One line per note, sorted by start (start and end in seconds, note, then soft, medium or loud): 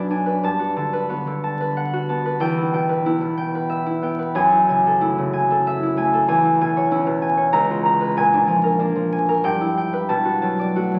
0.00 0.45 B1 medium
0.00 0.45 F#2 medium
0.00 2.43 F#3 medium
0.00 0.58 F#4 medium
0.00 0.25 B4 medium
0.00 2.43 D5 medium
0.00 1.64 F#5 medium
0.10 2.44 D4 medium
0.10 0.46 G#5 medium
0.26 0.92 B4 medium
0.43 2.44 G2 medium
0.43 0.75 A5 medium
0.59 1.09 F#4 medium
0.76 1.26 D3 medium
0.76 1.42 A5 medium
0.93 1.59 B4 medium
1.09 2.08 B3 medium
1.09 1.92 F#4 medium
1.27 2.45 D3 medium
1.44 2.08 A5 medium
1.60 2.24 B4 medium
1.77 2.45 F#5 medium
1.93 2.45 F#4 medium
2.09 3.05 B3 medium
2.09 2.44 A5 medium
2.25 2.88 B4 medium
2.40 4.38 E2 medium
2.40 2.72 G5 medium
2.58 3.04 E4 medium
2.73 3.20 B2 medium
2.73 3.36 G5 medium
2.89 3.54 B4 medium
3.06 4.01 B3 medium
3.06 3.85 E4 medium
3.21 4.38 B2 medium
3.37 4.02 G5 medium
3.55 4.18 B4 medium
3.70 5.66 E5 medium
3.86 4.50 E4 medium
4.02 4.38 B3 medium
4.02 4.38 G5 medium
4.19 4.38 B4 medium
4.35 6.30 F#2 medium
4.35 4.68 G#5 loud
4.52 5.00 E4 medium
4.69 5.17 C#3 medium
4.69 5.32 G#5 medium
4.87 5.49 A4 medium
5.01 5.96 A3 medium
5.01 5.82 E4 medium
5.18 6.31 C#3 medium
5.33 5.96 G#5 medium
5.50 6.12 A4 medium
5.67 7.56 E5 medium
5.83 6.43 E4 medium
5.97 6.30 A3 medium
5.97 6.27 G#5 medium
6.13 6.31 A4 medium
6.28 7.56 E2 medium
6.28 6.60 G#5 loud
6.44 6.90 E4 medium
6.61 7.05 B2 medium
6.61 7.21 G#5 medium
6.77 7.36 C#5 medium
6.91 8.20 C#4 medium
6.91 7.56 E4 medium
7.07 7.56 B2 medium
7.22 8.16 G#5 medium
7.37 8.20 C#5 medium
7.53 8.20 C#2 medium
7.53 7.84 A#5 loud
7.71 10.13 F4 medium
7.86 9.48 A#5 medium
8.01 8.20 B4 medium
8.17 9.47 A#2 medium
8.17 8.47 G#5 loud
8.33 8.78 D4 medium
8.47 8.94 F3 medium
8.47 9.11 G#5 medium
8.63 9.27 A#4 medium
8.79 9.47 A#3 medium
8.79 10.99 D4 medium
8.96 10.12 F3 medium
9.12 9.47 G#5 medium
9.29 9.47 A#4 medium
9.44 10.12 G2 medium
9.44 9.76 G5 medium
9.61 10.12 E4 medium
9.77 10.12 G5 medium
9.93 10.99 B4 medium
10.09 10.99 B2 medium
10.09 10.40 A5 medium
10.25 10.75 F#4 medium
10.42 10.93 F#3 medium
10.42 10.99 A5 medium
10.59 10.99 D5 medium
10.75 10.99 A3 medium
10.75 10.99 F#4 medium
10.94 10.99 F#3 medium